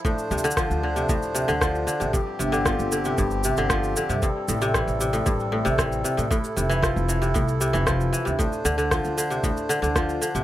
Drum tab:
SH |x-x-xxxxx-x---x-x-x-x-x-x-x-x-x-|x---x-x-x-x-x-x-x-x-x-x-x-x-x-x-|x---x-x-x-x-x-x-x-x---x-x-x-x-x-|x-x-x-x-x-x-x-x-x-x-x-x-x-x-x-x-|
SD |--------r---------------r-------|--------r---------------r-------|--------r---------------r-------|--------r---------------r-------|
BD |o-------o-------o-------o-------|o-------o-------o-------o-------|o-------o-------o-------o-------|o-------o-------o-------o-------|

SH |x-x-x-x-x-x-x-x-x-x-x-x-x-x-x-x-|
SD |--------r---------------r-------|
BD |o-------o-------o-------o-------|